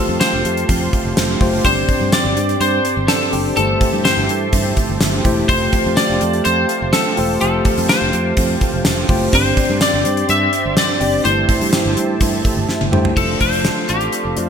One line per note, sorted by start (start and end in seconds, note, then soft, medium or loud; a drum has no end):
0.00 1.65 F3 medium
0.00 0.44 A3 medium
0.00 1.40 A3 medium
0.00 0.68 C4 medium
0.00 1.41 F4 medium
0.00 0.20 G4 medium
0.00 1.41 G4 medium
0.00 9.29 G4 medium
0.00 0.20 A4 loud
0.00 1.42 C5 medium
0.00 1.62 F5 medium
0.00 0.17 A5 medium
0.00 1.61 A5 medium
0.00 3.53 C6 medium
0.09 0.18 F2 loud
0.20 1.40 G4 medium
0.20 1.37 C5 medium
0.20 1.36 C6 medium
0.20 snare loud
0.20 closed hi-hat medium
0.20 tambourine medium
0.33 0.42 F1 medium
0.45 0.63 F2 medium
0.45 0.92 A3 medium
0.45 closed hi-hat medium
0.57 closed hi-hat soft
0.68 0.87 F2 loud
0.68 1.17 C4 medium
0.68 kick medium
0.68 closed hi-hat medium
0.93 1.64 A3 medium
0.93 kick medium
0.93 closed hi-hat medium
1.05 1.14 F1 medium
1.17 1.35 F1 medium
1.17 1.64 C4 medium
1.17 snare loud
1.17 closed hi-hat medium
1.17 tambourine medium
1.40 1.59 F#1 medium
1.40 1.62 A3 medium
1.40 1.63 F4 medium
1.40 2.12 G4 medium
1.40 1.63 G4 medium
1.40 1.63 C5 loud
1.40 kick loud
1.40 open hi-hat medium
1.64 1.83 G1 loud
1.64 2.33 G2 medium
1.64 2.36 C4 medium
1.64 2.51 C4 medium
1.64 2.51 D4 medium
1.64 2.52 G4 medium
1.64 9.29 C5 medium
1.64 2.15 C5 loud
1.64 3.55 D5 medium
1.64 2.52 D5 medium
1.64 2.10 C6 medium
1.64 kick loud
1.64 closed hi-hat medium
1.89 2.60 D4 medium
1.89 kick medium
1.89 closed hi-hat medium
2.01 2.10 G2 loud
2.12 3.32 G4 medium
2.12 2.63 D5 loud
2.12 2.57 D6 medium
2.12 snare loud
2.12 closed hi-hat medium
2.12 tambourine medium
2.25 2.34 G1 medium
2.37 2.55 G2 loud
2.37 2.85 C4 medium
2.37 closed hi-hat medium
2.49 closed hi-hat soft
2.60 2.79 G2 loud
2.60 3.08 D4 medium
2.60 3.08 C5 loud
2.60 3.06 C6 medium
2.60 closed hi-hat medium
2.85 3.81 C4 medium
2.85 closed hi-hat medium
2.97 3.06 G1 medium
3.08 3.62 D4 medium
3.08 3.56 A4 medium
3.08 3.53 A5 medium
3.08 snare loud
3.08 closed hi-hat medium
3.08 tambourine medium
3.32 3.51 F#1 medium
3.32 3.54 C4 medium
3.32 3.54 D4 medium
3.32 4.05 G4 medium
3.32 3.54 G4 medium
3.32 3.55 D5 medium
3.32 open hi-hat medium
3.57 3.75 G1 loud
3.57 4.25 G2 medium
3.57 5.48 E3 medium
3.57 4.43 A3 medium
3.57 4.43 E4 medium
3.57 4.44 G4 medium
3.57 4.04 A4 medium
3.57 4.44 C5 medium
3.57 5.47 E5 medium
3.57 4.02 A5 medium
3.57 5.48 A5 medium
3.57 closed hi-hat medium
3.81 4.53 C4 medium
3.81 kick medium
3.81 closed hi-hat medium
3.93 4.02 G2 loud
4.05 5.24 G4 medium
4.05 5.21 C5 medium
4.05 5.21 C6 medium
4.05 snare loud
4.05 closed hi-hat medium
4.05 tambourine medium
4.17 4.26 G1 medium
4.29 4.47 G2 loud
4.29 4.76 A3 medium
4.29 closed hi-hat medium
4.53 4.71 G2 loud
4.53 5.00 C4 medium
4.53 kick medium
4.53 closed hi-hat medium
4.77 5.99 A3 medium
4.77 kick medium
4.77 closed hi-hat medium
4.89 4.98 G1 medium
5.00 5.20 G1 medium
5.00 5.72 C4 medium
5.00 snare loud
5.00 closed hi-hat medium
5.00 tambourine medium
5.24 5.43 E1 medium
5.24 5.47 A3 medium
5.24 5.47 E4 medium
5.24 5.96 G4 medium
5.24 5.47 G4 medium
5.24 5.47 C5 medium
5.24 kick medium
5.24 closed hi-hat medium
5.49 5.67 F1 loud
5.49 7.39 F3 medium
5.49 6.35 A3 medium
5.49 6.35 F4 medium
5.49 6.36 G4 medium
5.49 5.99 C5 loud
5.49 6.36 C5 medium
5.49 9.30 F5 medium
5.49 9.29 A5 medium
5.49 5.94 C6 medium
5.49 kick loud
5.49 closed hi-hat medium
5.72 6.44 C4 medium
5.72 kick medium
5.72 closed hi-hat medium
5.86 5.95 F2 loud
5.96 7.17 G4 medium
5.96 6.47 D5 loud
5.96 6.42 D6 medium
5.96 snare loud
5.96 closed hi-hat medium
5.96 tambourine medium
6.10 6.18 F1 medium
6.21 6.40 F2 loud
6.21 6.68 A3 medium
6.21 closed hi-hat medium
6.33 closed hi-hat soft
6.45 6.64 F2 loud
6.45 6.92 C4 medium
6.45 6.90 C5 loud
6.45 6.90 C6 medium
6.45 closed hi-hat medium
6.69 8.12 A3 medium
6.69 closed hi-hat medium
6.82 6.91 F1 medium
6.93 7.64 C4 medium
6.93 7.40 A4 medium
6.93 7.38 A5 medium
6.93 snare loud
6.93 closed hi-hat medium
6.93 tambourine medium
7.17 7.36 E1 medium
7.17 7.39 A3 medium
7.17 7.39 F4 medium
7.17 7.89 G4 medium
7.17 7.39 G4 medium
7.17 7.39 C5 medium
7.17 open hi-hat medium
7.40 7.60 F1 loud
7.40 9.33 F3 medium
7.40 8.27 A3 medium
7.40 8.27 F4 medium
7.40 8.28 G4 medium
7.40 7.89 A4 medium
7.40 8.28 C5 medium
7.40 7.85 A5 medium
7.40 closed hi-hat medium
7.65 8.36 C4 medium
7.65 kick medium
7.65 closed hi-hat medium
7.78 7.87 F2 loud
7.78 closed hi-hat medium
7.89 9.08 G4 medium
7.89 9.05 C5 medium
7.89 9.05 C6 medium
7.89 snare loud
7.89 closed hi-hat medium
7.89 tambourine medium
8.02 8.10 F1 medium
8.13 8.31 F2 medium
8.13 8.60 A3 medium
8.13 closed hi-hat medium
8.36 8.55 F2 loud
8.36 8.84 C4 medium
8.36 kick medium
8.36 closed hi-hat medium
8.61 9.32 A3 medium
8.61 kick medium
8.61 closed hi-hat medium
8.74 8.83 F1 medium
8.85 9.04 F1 loud
8.85 9.33 C4 medium
8.85 snare loud
8.85 closed hi-hat medium
8.85 tambourine medium
9.09 9.27 F#1 loud
9.09 9.30 A3 medium
9.09 9.31 F4 medium
9.09 9.80 G4 medium
9.09 9.31 G4 medium
9.09 9.31 C5 loud
9.09 kick loud
9.09 open hi-hat medium
9.33 9.51 G1 loud
9.33 10.01 G2 medium
9.33 10.04 C4 medium
9.33 10.19 C4 medium
9.33 10.19 D4 medium
9.33 13.13 G4 medium
9.33 10.20 G4 medium
9.33 13.13 C5 medium
9.33 9.83 C5 medium
9.33 11.23 D5 medium
9.33 10.20 D5 medium
9.33 11.23 C6 medium
9.33 9.79 C6 medium
9.33 kick loud
9.33 closed hi-hat medium
9.57 10.28 D4 medium
9.57 kick medium
9.57 closed hi-hat medium
9.70 9.78 G2 loud
9.81 11.00 G4 medium
9.81 10.29 D5 loud
9.81 10.26 D6 medium
9.81 snare loud
9.81 closed hi-hat medium
9.81 tambourine medium
9.94 10.02 G1 medium
10.05 10.23 G2 medium
10.05 10.52 C4 medium
10.05 closed hi-hat medium
10.17 closed hi-hat soft
10.29 10.47 G2 loud
10.29 10.76 D4 medium
10.29 10.74 E5 loud
10.29 10.75 E6 medium
10.29 closed hi-hat medium
10.52 10.77 C4 medium
10.52 closed hi-hat medium
10.65 10.74 G1 medium
10.77 10.88 C4 medium
10.77 11.22 D5 loud
10.77 11.22 D6 medium
10.77 snare loud
10.77 closed hi-hat medium
10.77 tambourine medium
10.88 11.30 D4 medium
11.00 11.19 F#1 loud
11.00 11.22 C4 medium
11.00 11.22 D4 medium
11.00 11.30 G4 medium
11.00 11.23 G4 medium
11.00 11.23 D5 medium
11.00 open hi-hat medium
11.24 11.43 G1 loud
11.24 11.93 G2 medium
11.24 13.16 E3 medium
11.24 12.11 A3 medium
11.24 12.11 E4 medium
11.24 12.11 G4 medium
11.24 12.11 C5 medium
11.24 12.89 C5 medium
11.24 13.15 E5 medium
11.24 13.15 A5 medium
11.24 12.89 C6 medium
11.24 closed hi-hat medium
11.48 12.20 E4 medium
11.48 kick medium
11.48 closed hi-hat medium
11.61 11.70 G2 medium
11.61 closed hi-hat medium
11.73 12.91 G4 medium
11.73 snare loud
11.73 closed hi-hat medium
11.73 tambourine medium
11.85 11.94 G1 medium
11.97 12.15 G2 loud
11.97 12.44 A3 medium
11.97 closed hi-hat medium
12.21 12.39 G2 medium
12.21 12.68 E4 medium
12.21 kick medium
12.21 closed hi-hat medium
12.44 13.88 A3 medium
12.44 muted fingered electric bass stroke soft
12.44 kick medium
12.44 closed hi-hat medium
12.57 12.66 G1 medium
12.69 13.22 E4 medium
12.69 muted fingered electric bass stroke soft
12.69 snare medium
12.81 12.90 G1 medium
12.81 high tom medium
12.92 13.11 G2 loud
12.92 13.14 A3 medium
12.92 13.14 E4 medium
12.92 13.17 G4 medium
12.92 13.14 G4 medium
12.92 13.14 C5 loud
12.92 mid tom medium
13.05 floor tom medium
13.16 13.35 F1 loud
13.16 14.49 F3 medium
13.16 13.22 G3 medium
13.16 14.03 D4 medium
13.16 14.03 F4 medium
13.16 13.64 A4 medium
13.16 13.40 A4 medium
13.16 14.49 A4 medium
13.16 14.03 C5 medium
13.16 14.49 D5 medium
13.16 14.49 F5 medium
13.16 14.49 C6 medium
13.16 kick loud
13.16 crash medium
13.22 14.06 A3 medium
13.40 13.68 F1 medium
13.40 14.37 D4 medium
13.40 13.91 C5 medium
13.40 kick medium
13.40 closed hi-hat medium
13.53 closed hi-hat medium
13.65 14.13 A4 medium
13.65 snare loud
13.65 closed hi-hat medium
13.89 14.07 A1 medium
13.89 14.49 C4 medium
13.89 14.44 G4 medium
13.89 closed hi-hat medium
14.01 closed hi-hat soft
14.12 14.49 A4 medium
14.12 closed hi-hat medium
14.25 14.34 F1 medium
14.36 14.49 F2 medium
14.36 14.49 A3 medium
14.36 14.49 D4 medium
14.36 14.49 F4 medium
14.36 14.49 C5 medium
14.36 closed hi-hat medium
14.44 14.49 F4 medium